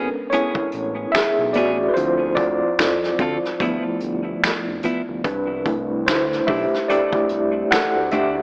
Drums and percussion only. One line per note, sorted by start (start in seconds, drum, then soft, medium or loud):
0.32 closed hi-hat medium
0.55 kick medium
0.72 closed hi-hat medium
1.15 finger snap medium
1.15 snare medium
1.15 closed hi-hat medium
1.54 closed hi-hat medium
1.96 closed hi-hat medium
2.37 kick medium
2.37 closed hi-hat medium
2.78 finger snap medium
2.78 snare loud
2.78 closed hi-hat medium
3.04 snare soft
3.19 kick medium
3.19 closed hi-hat medium
3.45 snare soft
3.60 kick medium
3.60 closed hi-hat medium
4.00 closed hi-hat medium
4.44 finger snap medium
4.44 snare loud
4.44 closed hi-hat medium
4.83 closed hi-hat medium
5.24 kick medium
5.24 closed hi-hat medium
5.66 kick medium
5.66 closed hi-hat medium
6.07 finger snap medium
6.07 snare loud
6.07 closed hi-hat medium
6.33 snare soft
6.48 kick medium
6.48 open hi-hat soft
6.74 snare soft
6.90 closed hi-hat medium
7.13 kick medium
7.29 closed hi-hat medium
7.72 finger snap medium
7.72 snare loud
7.72 closed hi-hat medium
8.11 closed hi-hat medium